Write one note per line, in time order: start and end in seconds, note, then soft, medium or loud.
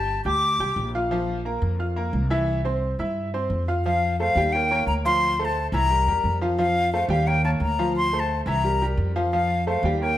0.00 0.19 G1 medium
0.00 0.19 G4 medium
0.00 0.19 G5 medium
0.00 0.22 A5 loud
0.00 0.19 G6 medium
0.25 0.57 D2 loud
0.25 0.53 G4 medium
0.25 0.54 G5 medium
0.25 0.90 D6 loud
0.25 0.54 G6 medium
0.59 0.75 C2 medium
0.59 0.88 G4 medium
0.59 0.88 G5 medium
0.59 0.88 G6 medium
0.76 1.56 A#1 loud
0.95 1.08 F4 medium
0.95 1.08 F5 medium
0.95 1.09 F6 medium
1.11 1.39 F3 medium
1.11 1.40 F4 medium
1.11 1.40 F5 medium
1.45 1.73 A#3 medium
1.45 1.74 A#4 medium
1.45 1.74 A#5 medium
1.62 2.10 F2 loud
1.79 1.93 F4 medium
1.79 1.94 F5 medium
1.79 1.94 F6 medium
1.96 2.24 A#3 medium
1.96 2.25 A#4 medium
1.96 2.25 A#5 medium
2.13 2.93 C2 loud
2.30 2.59 E3 loud
2.30 2.59 E4 medium
2.30 2.59 E5 loud
2.65 2.93 C4 medium
2.65 2.93 C5 medium
2.65 2.93 C6 medium
2.99 3.47 G2 medium
2.99 3.27 E4 medium
2.99 3.28 E5 medium
2.99 3.28 E6 medium
3.34 3.62 C4 medium
3.34 3.62 C5 medium
3.34 3.62 C6 medium
3.50 4.30 F2 medium
3.68 3.82 F4 medium
3.68 3.82 F5 medium
3.68 3.82 F6 medium
3.85 4.13 F3 medium
3.85 4.13 F4 medium
3.85 4.17 F5 loud
3.85 4.14 F5 medium
4.19 4.33 A3 medium
4.19 4.34 A4 medium
4.19 4.34 C5 medium
4.19 4.54 F5 loud
4.36 4.84 D#2 loud
4.36 4.51 G3 medium
4.36 4.51 G4 medium
4.36 4.51 G5 medium
4.52 4.68 A#3 medium
4.52 4.68 A#4 medium
4.52 4.68 C#5 medium
4.52 4.87 G5 medium
4.71 4.99 A#3 medium
4.71 4.99 A#4 medium
4.71 4.99 C#5 medium
4.87 5.67 D2 loud
4.87 4.93 A#5 loud
5.05 5.33 F3 medium
5.05 5.33 F4 loud
5.05 5.33 F5 medium
5.05 5.46 C6 loud
5.39 5.67 A3 medium
5.39 5.67 A4 medium
5.39 5.67 C5 medium
5.45 5.67 A5 medium
5.72 6.04 C2 loud
5.72 5.87 E3 medium
5.72 5.88 E4 medium
5.72 5.88 E5 medium
5.72 6.38 A#5 loud
5.90 6.04 G3 medium
5.90 6.04 G4 medium
5.90 6.04 A#4 medium
6.07 6.23 E2 medium
6.07 6.36 G3 medium
6.07 6.36 G4 medium
6.07 6.36 A#4 medium
6.24 7.04 F2 loud
6.41 6.55 F3 medium
6.41 6.56 F4 medium
6.41 6.56 F5 medium
6.58 6.87 F3 loud
6.58 6.87 F4 medium
6.58 6.87 F5 medium
6.58 6.91 F5 loud
6.93 7.07 A3 medium
6.93 7.07 A4 medium
6.93 7.07 C5 medium
6.93 7.09 F5 medium
7.09 7.57 D#2 loud
7.09 7.24 G3 medium
7.09 7.24 G4 medium
7.09 7.29 F5 medium
7.09 7.24 G5 medium
7.27 7.41 A#3 medium
7.27 7.41 A#4 medium
7.27 7.41 C#5 medium
7.27 7.44 G5 medium
7.45 7.73 A#3 medium
7.45 7.73 A#4 medium
7.45 7.73 C#5 medium
7.45 7.51 A5 medium
7.60 8.40 D2 loud
7.60 7.93 A#5 loud
7.79 8.07 F3 medium
7.79 8.07 F4 medium
7.79 8.07 F5 medium
7.96 8.21 C6 loud
8.13 8.41 A3 medium
8.13 8.41 A4 medium
8.13 8.41 C5 medium
8.19 8.42 A5 medium
8.46 8.94 C2 loud
8.46 8.61 E3 medium
8.46 8.61 E4 medium
8.46 8.61 E5 medium
8.46 8.86 A#5 medium
8.64 8.78 G3 medium
8.64 8.78 G4 medium
8.64 8.78 A#4 medium
8.82 9.10 G3 medium
8.82 9.10 G4 medium
8.82 9.10 A#4 medium
8.97 9.78 F2 loud
9.16 9.30 F3 medium
9.16 9.30 F4 medium
9.16 9.30 F5 medium
9.33 9.61 F3 medium
9.33 9.61 F4 medium
9.33 9.64 F5 loud
9.33 9.61 F5 medium
9.67 9.81 A3 medium
9.67 9.81 A4 medium
9.67 9.81 C5 medium
9.67 9.99 F5 loud
9.83 10.18 D#2 loud
9.83 9.98 G3 medium
9.83 9.98 G4 medium
9.83 9.99 G5 medium
10.01 10.15 A#3 medium
10.01 10.16 A#4 medium
10.01 10.16 C#5 medium
10.01 10.18 G5 loud